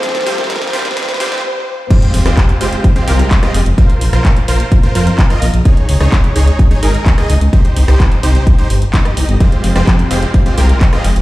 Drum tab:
CC |--------------------------------|x-------------------------------|--------------------------------|--------------------------------|
HH |x-x-o-x-x-x-o-x-x-x-o-x---------|x-x-o-x-x-x-o-x-x-x-o-x-x-x-o-x-|x-x-o-x-x-x-o-x-x-x-o-x-x-x-o-x-|x-x-o---x-x-o-x-x-x-o-x-x-x-o-x-|
CP |--------------------------------|--------x---------------x-------|--------x---------------x-------|--------x---------------x-------|
SD |oooooooooooooooooooooooo--------|------r-------------------r-----|------r-------------------r-----|------r-------------------r-----|
BD |o-------o-------o---------------|o-------o-------o-------o-------|o-------o-------o-------o-------|o-------o-------o-------o-------|

CC |--------------------------------|--------------------------------|
HH |x-x-o-x-x-x-o-x-x-x-o-x-x-x-o-x-|x-x-o-x-x-x-o-x-x-x-o-x-x-x-o-x-|
CP |--------x---------------x-------|--------x---------------x-------|
SD |------r-------------------r-----|------r-------------------r-----|
BD |o-------o-------o-------o-------|o-------o-------o-------o-------|